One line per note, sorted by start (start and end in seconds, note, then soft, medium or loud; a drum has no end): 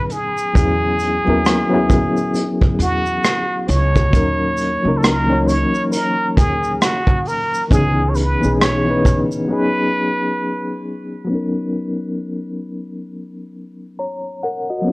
0.00 0.53 F#3 medium
0.00 0.55 B3 medium
0.00 0.56 C#4 medium
0.00 0.56 D#4 medium
0.00 0.56 G#4 medium
0.00 0.13 B4 medium
0.10 2.56 G#4 medium
0.10 closed hi-hat medium
0.10 shaker soft
0.38 shaker medium
0.53 1.17 E2 loud
0.53 1.16 F#3 medium
0.53 1.16 B3 medium
0.53 1.17 C#4 medium
0.53 1.18 E4 medium
0.53 kick loud
0.53 closed hi-hat medium
0.53 shaker medium
0.59 1.19 G#4 medium
1.00 closed hi-hat medium
1.00 shaker soft
1.25 2.05 D#2 medium
1.25 1.64 F#3 medium
1.25 1.65 B3 medium
1.25 1.65 C#4 medium
1.25 1.66 E4 medium
1.30 1.66 A#4 loud
1.46 cross-stick loud
1.46 closed hi-hat medium
1.46 shaker medium
1.70 3.23 F#3 medium
1.70 3.24 B3 medium
1.70 3.25 C#4 medium
1.70 3.25 E4 medium
1.74 3.26 G#4 loud
1.90 kick medium
1.90 closed hi-hat medium
1.90 shaker medium
2.17 shaker soft
2.35 closed hi-hat medium
2.35 shaker medium
2.61 kick medium
2.79 3.18 E2 medium
2.79 3.70 F#4 medium
2.79 closed hi-hat medium
2.79 shaker medium
3.06 shaker soft
3.25 cross-stick loud
3.25 closed hi-hat medium
3.25 shaker medium
3.68 4.08 C#2 loud
3.68 4.99 C#5 medium
3.68 closed hi-hat medium
3.68 shaker soft
3.96 kick medium
3.96 shaker soft
4.11 4.76 D#2 medium
4.11 4.74 F#3 medium
4.11 4.74 A#3 medium
4.11 4.75 C#4 medium
4.11 kick loud
4.11 closed hi-hat medium
4.11 shaker medium
4.15 4.76 D#4 medium
4.15 4.76 A#4 medium
4.57 closed hi-hat medium
4.57 shaker medium
4.83 5.63 C#2 medium
4.83 5.22 F#3 medium
4.83 5.22 A#3 medium
4.83 5.23 C#4 medium
4.83 5.24 D#4 medium
4.88 5.24 A#4 medium
4.97 5.04 A4 medium
5.03 5.49 A#4 medium
5.03 cross-stick loud
5.03 closed hi-hat medium
5.03 shaker medium
5.26 5.33 E3 medium
5.26 6.82 A#3 medium
5.26 6.82 C#4 medium
5.26 6.83 D#4 medium
5.32 6.84 F#3 medium
5.32 6.84 C#5 medium
5.47 5.93 C#5 medium
5.47 closed hi-hat medium
5.47 shaker medium
5.75 shaker soft
5.92 6.38 A#4 loud
5.92 closed hi-hat medium
5.92 shaker medium
6.37 6.76 D#2 medium
6.37 6.83 G#4 medium
6.37 kick medium
6.37 closed hi-hat medium
6.37 shaker soft
6.64 shaker soft
6.82 7.29 F#4 medium
6.82 cross-stick loud
6.82 closed hi-hat medium
6.82 shaker medium
7.07 kick medium
7.25 7.73 A#4 medium
7.25 open hi-hat soft
7.25 shaker soft
7.54 shaker medium
7.68 8.33 C#2 medium
7.68 8.31 E3 medium
7.68 8.32 B3 medium
7.68 8.33 C#4 medium
7.68 8.11 G#4 medium
7.68 kick loud
7.68 closed hi-hat medium
7.72 8.33 D#4 medium
7.72 8.34 G#4 medium
7.72 shaker medium
8.10 8.17 C#5 medium
8.15 8.60 B4 medium
8.15 closed hi-hat medium
8.15 shaker soft
8.40 9.21 B1 medium
8.40 8.80 E3 medium
8.40 8.80 B3 medium
8.40 8.81 C#4 medium
8.40 shaker soft
8.44 8.82 D#4 medium
8.44 8.82 G#4 medium
8.60 9.23 C#5 medium
8.60 cross-stick loud
8.60 closed hi-hat medium
8.60 shaker medium
8.85 9.49 E3 medium
8.85 9.47 B3 medium
8.85 9.49 C#4 medium
8.85 9.50 D#4 medium
8.91 9.52 B4 medium
9.05 kick medium
9.05 closed hi-hat medium
9.05 shaker medium
9.32 shaker soft
9.48 11.11 F#3 medium
9.48 11.11 B3 medium
9.48 11.12 C#4 medium
9.48 11.13 D#4 medium
9.48 10.80 B4 medium
9.53 11.13 G#4 medium
11.24 14.81 F#3 medium
11.24 14.82 B3 medium
11.30 14.84 C#4 medium
11.30 14.85 D#4 medium
11.35 13.97 A#4 medium
13.99 14.41 C#5 medium
13.99 14.41 A#5 medium
14.43 14.69 A#4 medium
14.43 14.68 F#5 medium
14.70 14.92 F#4 soft
14.70 14.92 D#5 medium
14.82 14.92 F#3 medium
14.82 14.92 B3 medium
14.87 14.92 C#4 medium